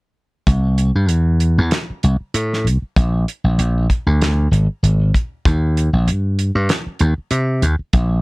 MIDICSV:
0, 0, Header, 1, 4, 480
1, 0, Start_track
1, 0, Tempo, 622407
1, 364, Time_signature, 4, 2, 24, 8
1, 6337, End_track
2, 0, Start_track
2, 0, Title_t, "Slap bass"
2, 0, Program_c, 0, 36
2, 362, Note_on_c, 0, 36, 76
2, 696, Note_off_c, 0, 36, 0
2, 735, Note_on_c, 0, 43, 63
2, 844, Note_off_c, 0, 43, 0
2, 844, Note_on_c, 0, 40, 68
2, 1176, Note_off_c, 0, 40, 0
2, 1220, Note_on_c, 0, 40, 59
2, 1315, Note_off_c, 0, 40, 0
2, 1571, Note_on_c, 0, 36, 76
2, 1686, Note_off_c, 0, 36, 0
2, 1806, Note_on_c, 0, 45, 71
2, 2041, Note_on_c, 0, 36, 76
2, 2052, Note_off_c, 0, 45, 0
2, 2161, Note_off_c, 0, 36, 0
2, 2287, Note_on_c, 0, 34, 77
2, 2501, Note_off_c, 0, 34, 0
2, 2654, Note_on_c, 0, 34, 65
2, 2752, Note_off_c, 0, 34, 0
2, 2764, Note_on_c, 0, 34, 68
2, 2979, Note_off_c, 0, 34, 0
2, 3136, Note_on_c, 0, 38, 65
2, 3448, Note_off_c, 0, 38, 0
2, 3481, Note_on_c, 0, 32, 71
2, 3601, Note_off_c, 0, 32, 0
2, 3723, Note_on_c, 0, 32, 69
2, 3939, Note_off_c, 0, 32, 0
2, 4207, Note_on_c, 0, 39, 75
2, 4539, Note_off_c, 0, 39, 0
2, 4574, Note_on_c, 0, 34, 63
2, 4675, Note_on_c, 0, 43, 65
2, 4687, Note_off_c, 0, 34, 0
2, 5012, Note_off_c, 0, 43, 0
2, 5053, Note_on_c, 0, 43, 65
2, 5152, Note_off_c, 0, 43, 0
2, 5402, Note_on_c, 0, 39, 72
2, 5522, Note_off_c, 0, 39, 0
2, 5635, Note_on_c, 0, 48, 75
2, 5878, Note_on_c, 0, 39, 78
2, 5890, Note_off_c, 0, 48, 0
2, 6000, Note_off_c, 0, 39, 0
2, 6120, Note_on_c, 0, 34, 77
2, 6337, Note_off_c, 0, 34, 0
2, 6337, End_track
3, 0, Start_track
3, 0, Title_t, "Muted slap bass strokes"
3, 1466, Note_on_c, 9, 29, 31
3, 1543, Note_off_c, 9, 29, 0
3, 2177, Note_on_c, 9, 29, 29
3, 2254, Note_off_c, 9, 29, 0
3, 5295, Note_on_c, 9, 29, 32
3, 5372, Note_off_c, 9, 29, 0
3, 5537, Note_on_c, 9, 29, 30
3, 5614, Note_off_c, 9, 29, 0
3, 6010, Note_on_c, 9, 29, 30
3, 6087, Note_off_c, 9, 29, 0
3, 6337, End_track
4, 0, Start_track
4, 0, Title_t, "Drums"
4, 361, Note_on_c, 9, 36, 81
4, 364, Note_on_c, 9, 42, 67
4, 438, Note_off_c, 9, 36, 0
4, 441, Note_off_c, 9, 42, 0
4, 601, Note_on_c, 9, 42, 50
4, 678, Note_off_c, 9, 42, 0
4, 838, Note_on_c, 9, 42, 67
4, 915, Note_off_c, 9, 42, 0
4, 1081, Note_on_c, 9, 42, 50
4, 1158, Note_off_c, 9, 42, 0
4, 1320, Note_on_c, 9, 42, 72
4, 1327, Note_on_c, 9, 38, 90
4, 1397, Note_off_c, 9, 42, 0
4, 1404, Note_off_c, 9, 38, 0
4, 1566, Note_on_c, 9, 42, 46
4, 1643, Note_off_c, 9, 42, 0
4, 1807, Note_on_c, 9, 42, 74
4, 1884, Note_off_c, 9, 42, 0
4, 1955, Note_on_c, 9, 38, 26
4, 2032, Note_off_c, 9, 38, 0
4, 2060, Note_on_c, 9, 42, 54
4, 2137, Note_off_c, 9, 42, 0
4, 2286, Note_on_c, 9, 36, 87
4, 2290, Note_on_c, 9, 42, 69
4, 2363, Note_off_c, 9, 36, 0
4, 2367, Note_off_c, 9, 42, 0
4, 2532, Note_on_c, 9, 42, 49
4, 2609, Note_off_c, 9, 42, 0
4, 2768, Note_on_c, 9, 42, 69
4, 2845, Note_off_c, 9, 42, 0
4, 3006, Note_on_c, 9, 36, 61
4, 3010, Note_on_c, 9, 42, 49
4, 3083, Note_off_c, 9, 36, 0
4, 3087, Note_off_c, 9, 42, 0
4, 3251, Note_on_c, 9, 42, 63
4, 3258, Note_on_c, 9, 38, 89
4, 3328, Note_off_c, 9, 42, 0
4, 3335, Note_off_c, 9, 38, 0
4, 3493, Note_on_c, 9, 42, 47
4, 3570, Note_off_c, 9, 42, 0
4, 3731, Note_on_c, 9, 42, 67
4, 3808, Note_off_c, 9, 42, 0
4, 3967, Note_on_c, 9, 36, 61
4, 3974, Note_on_c, 9, 42, 50
4, 4045, Note_off_c, 9, 36, 0
4, 4051, Note_off_c, 9, 42, 0
4, 4206, Note_on_c, 9, 36, 94
4, 4211, Note_on_c, 9, 42, 64
4, 4283, Note_off_c, 9, 36, 0
4, 4288, Note_off_c, 9, 42, 0
4, 4452, Note_on_c, 9, 42, 52
4, 4529, Note_off_c, 9, 42, 0
4, 4686, Note_on_c, 9, 42, 68
4, 4763, Note_off_c, 9, 42, 0
4, 4926, Note_on_c, 9, 42, 51
4, 5003, Note_off_c, 9, 42, 0
4, 5160, Note_on_c, 9, 42, 70
4, 5167, Note_on_c, 9, 38, 90
4, 5237, Note_off_c, 9, 42, 0
4, 5244, Note_off_c, 9, 38, 0
4, 5393, Note_on_c, 9, 42, 51
4, 5471, Note_off_c, 9, 42, 0
4, 5635, Note_on_c, 9, 42, 70
4, 5712, Note_off_c, 9, 42, 0
4, 5879, Note_on_c, 9, 42, 52
4, 5956, Note_off_c, 9, 42, 0
4, 6116, Note_on_c, 9, 42, 70
4, 6119, Note_on_c, 9, 36, 90
4, 6193, Note_off_c, 9, 42, 0
4, 6196, Note_off_c, 9, 36, 0
4, 6337, End_track
0, 0, End_of_file